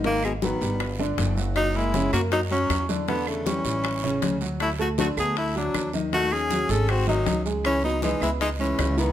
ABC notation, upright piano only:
X:1
M:4/4
L:1/8
Q:1/4=158
K:C#m
V:1 name="Upright piano"
[D,D]2 [F,F] [=G,=G]2 [=D,=D]2 [F,F]- | [F,F] [^A,^A] [C,C] [A,A]2 [F,F]2 [=D,=D] | [=D,=D]2 [=G,=G] [G,G]2 [C,C]2 [F,F]- | [F,F] [A,A] [=D,=D] [A,A]2 [F,F]2 [^D,^D] |
[D,D]2 [F,F] [G,G]2 [D,D]2 [G,G]- | [G,G] [B,B] [E,E] [B,B]2 [G,G]2 [E,E] |]